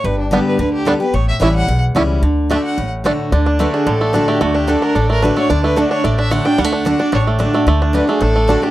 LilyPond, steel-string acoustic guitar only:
\new Staff \with { instrumentName = "Steel-string acoustic guitar" } { \time 4/4 \key d \major \tempo 4 = 220 << { r4 <d g b g'>4 r4 <d g b g'>8 <b g'>8 | r4 <e g cis' e'>4 r4 <e g cis' e'>4 | r4 <d a d' fis'>4 r4 <d a d' fis'>4 | r4 <d a d' fis'>4 r4 <d a d' fis'>4 |
r4 <d a d' fis'>4 r4 <d a d' fis'>8 <d' fis'>8 | r4 <d a d' fis'>4 r4 <d a d' fis'>8 <d' fis'>8 | r4 <d a d' fis'>8 <d' fis'>8 r4 <d a d' fis'>8 <d' fis'>8 | r4 <d a d' fis'>8 <d' fis'>8 r4 <d a d' fis'>8 <d' fis'>8 | } \\ { g,2 d2 | a,2 e,2 | d2 a,2 | d2 a,2 |
d2 a,2 | d2 a,2 | d2 a,2 | d2 a,2 | } >> }